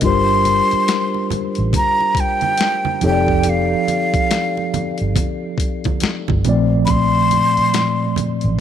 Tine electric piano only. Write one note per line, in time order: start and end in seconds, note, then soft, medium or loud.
0.02 2.98 G3 medium
0.02 2.98 D4 soft
0.02 2.99 F4 soft
0.02 3.00 G4 soft
0.02 3.00 A#4 medium
0.07 3.00 C5 medium
3.01 6.40 F3 medium
3.01 6.41 C4 soft
3.01 6.41 D#4 medium
3.01 6.42 G4 medium
3.01 6.42 A4 medium
3.05 3.12 C#5 soft
3.12 6.46 D5 medium
6.44 8.60 A#2 medium
6.44 8.60 F3 medium
6.44 8.60 A3 medium
6.44 8.60 C4 medium
6.49 8.60 D5 medium